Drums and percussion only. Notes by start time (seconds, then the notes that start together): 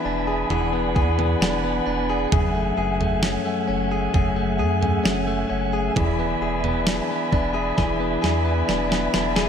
0.50 floor tom
0.96 kick
1.19 floor tom
1.42 snare
2.32 kick, floor tom
3.01 floor tom
3.23 snare
4.14 kick, floor tom
4.83 floor tom
5.05 snare
5.96 kick, floor tom
6.64 floor tom
6.87 snare
7.32 kick
7.78 kick, snare
8.24 snare
8.69 snare
8.92 snare
9.14 snare
9.36 snare